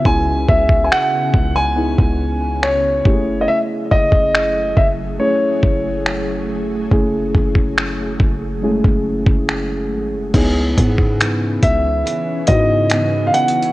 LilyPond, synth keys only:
\new Staff \with { instrumentName = "Synth keys" } { \time 4/4 \key cis \minor \tempo 4 = 70 <b cis' e' gis'>4. r8 <b dis' e' gis'>4. <a cis' e' g' gis'>8~ | <a cis' e' g' gis'>4 r4 <a cis' e' gis'>4. r8 | <a cis' e' gis'>4. r8 <gis a cis' e' gis'>4. r8 | <b dis' e' gis'>4. r4 <b dis' e' fis'>4~ <b dis' e' fis'>16 r16 | }